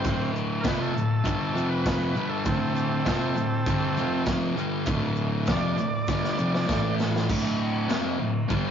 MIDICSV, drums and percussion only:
0, 0, Header, 1, 2, 480
1, 0, Start_track
1, 0, Tempo, 603622
1, 38, Time_signature, 4, 2, 24, 8
1, 6925, End_track
2, 0, Start_track
2, 0, Title_t, "Drums"
2, 33, Note_on_c, 9, 49, 69
2, 38, Note_on_c, 9, 36, 127
2, 43, Note_on_c, 9, 82, 113
2, 113, Note_off_c, 9, 49, 0
2, 118, Note_off_c, 9, 36, 0
2, 122, Note_off_c, 9, 82, 0
2, 283, Note_on_c, 9, 82, 77
2, 363, Note_off_c, 9, 82, 0
2, 509, Note_on_c, 9, 49, 60
2, 515, Note_on_c, 9, 36, 123
2, 517, Note_on_c, 9, 38, 115
2, 529, Note_on_c, 9, 82, 82
2, 588, Note_off_c, 9, 49, 0
2, 595, Note_off_c, 9, 36, 0
2, 596, Note_off_c, 9, 38, 0
2, 608, Note_off_c, 9, 82, 0
2, 773, Note_on_c, 9, 82, 74
2, 852, Note_off_c, 9, 82, 0
2, 994, Note_on_c, 9, 49, 58
2, 999, Note_on_c, 9, 36, 102
2, 1002, Note_on_c, 9, 82, 104
2, 1073, Note_off_c, 9, 49, 0
2, 1079, Note_off_c, 9, 36, 0
2, 1082, Note_off_c, 9, 82, 0
2, 1249, Note_on_c, 9, 82, 83
2, 1328, Note_off_c, 9, 82, 0
2, 1473, Note_on_c, 9, 82, 90
2, 1477, Note_on_c, 9, 36, 112
2, 1477, Note_on_c, 9, 49, 65
2, 1485, Note_on_c, 9, 38, 114
2, 1553, Note_off_c, 9, 82, 0
2, 1557, Note_off_c, 9, 36, 0
2, 1557, Note_off_c, 9, 49, 0
2, 1565, Note_off_c, 9, 38, 0
2, 1717, Note_on_c, 9, 82, 70
2, 1797, Note_off_c, 9, 82, 0
2, 1950, Note_on_c, 9, 82, 91
2, 1951, Note_on_c, 9, 49, 69
2, 1956, Note_on_c, 9, 36, 117
2, 2029, Note_off_c, 9, 82, 0
2, 2031, Note_off_c, 9, 49, 0
2, 2035, Note_off_c, 9, 36, 0
2, 2195, Note_on_c, 9, 82, 78
2, 2274, Note_off_c, 9, 82, 0
2, 2431, Note_on_c, 9, 49, 62
2, 2436, Note_on_c, 9, 36, 112
2, 2436, Note_on_c, 9, 82, 90
2, 2439, Note_on_c, 9, 38, 114
2, 2511, Note_off_c, 9, 49, 0
2, 2515, Note_off_c, 9, 36, 0
2, 2515, Note_off_c, 9, 82, 0
2, 2519, Note_off_c, 9, 38, 0
2, 2676, Note_on_c, 9, 82, 81
2, 2755, Note_off_c, 9, 82, 0
2, 2911, Note_on_c, 9, 49, 70
2, 2914, Note_on_c, 9, 36, 122
2, 2924, Note_on_c, 9, 82, 92
2, 2991, Note_off_c, 9, 49, 0
2, 2993, Note_off_c, 9, 36, 0
2, 3004, Note_off_c, 9, 82, 0
2, 3157, Note_on_c, 9, 82, 84
2, 3236, Note_off_c, 9, 82, 0
2, 3386, Note_on_c, 9, 49, 63
2, 3393, Note_on_c, 9, 36, 112
2, 3394, Note_on_c, 9, 38, 106
2, 3394, Note_on_c, 9, 82, 84
2, 3465, Note_off_c, 9, 49, 0
2, 3473, Note_off_c, 9, 36, 0
2, 3473, Note_off_c, 9, 38, 0
2, 3473, Note_off_c, 9, 82, 0
2, 3638, Note_on_c, 9, 82, 80
2, 3717, Note_off_c, 9, 82, 0
2, 3863, Note_on_c, 9, 49, 66
2, 3872, Note_on_c, 9, 82, 94
2, 3873, Note_on_c, 9, 36, 127
2, 3942, Note_off_c, 9, 49, 0
2, 3951, Note_off_c, 9, 82, 0
2, 3952, Note_off_c, 9, 36, 0
2, 4102, Note_on_c, 9, 82, 74
2, 4181, Note_off_c, 9, 82, 0
2, 4343, Note_on_c, 9, 82, 93
2, 4348, Note_on_c, 9, 49, 57
2, 4356, Note_on_c, 9, 36, 118
2, 4356, Note_on_c, 9, 38, 116
2, 4423, Note_off_c, 9, 82, 0
2, 4427, Note_off_c, 9, 49, 0
2, 4435, Note_off_c, 9, 38, 0
2, 4436, Note_off_c, 9, 36, 0
2, 4592, Note_on_c, 9, 82, 80
2, 4672, Note_off_c, 9, 82, 0
2, 4832, Note_on_c, 9, 82, 106
2, 4836, Note_on_c, 9, 36, 122
2, 4841, Note_on_c, 9, 38, 64
2, 4911, Note_off_c, 9, 82, 0
2, 4916, Note_off_c, 9, 36, 0
2, 4920, Note_off_c, 9, 38, 0
2, 4961, Note_on_c, 9, 38, 65
2, 5041, Note_off_c, 9, 38, 0
2, 5073, Note_on_c, 9, 82, 77
2, 5152, Note_off_c, 9, 82, 0
2, 5204, Note_on_c, 9, 38, 67
2, 5283, Note_off_c, 9, 38, 0
2, 5320, Note_on_c, 9, 36, 117
2, 5324, Note_on_c, 9, 82, 99
2, 5326, Note_on_c, 9, 38, 100
2, 5400, Note_off_c, 9, 36, 0
2, 5403, Note_off_c, 9, 82, 0
2, 5405, Note_off_c, 9, 38, 0
2, 5558, Note_on_c, 9, 82, 78
2, 5569, Note_on_c, 9, 38, 98
2, 5637, Note_off_c, 9, 82, 0
2, 5648, Note_off_c, 9, 38, 0
2, 5693, Note_on_c, 9, 38, 102
2, 5772, Note_off_c, 9, 38, 0
2, 5802, Note_on_c, 9, 36, 123
2, 5804, Note_on_c, 9, 49, 74
2, 5804, Note_on_c, 9, 57, 120
2, 5881, Note_off_c, 9, 36, 0
2, 5884, Note_off_c, 9, 49, 0
2, 5884, Note_off_c, 9, 57, 0
2, 6278, Note_on_c, 9, 49, 67
2, 6286, Note_on_c, 9, 38, 110
2, 6358, Note_off_c, 9, 49, 0
2, 6366, Note_off_c, 9, 38, 0
2, 6761, Note_on_c, 9, 36, 104
2, 6771, Note_on_c, 9, 49, 65
2, 6841, Note_off_c, 9, 36, 0
2, 6850, Note_off_c, 9, 49, 0
2, 6925, End_track
0, 0, End_of_file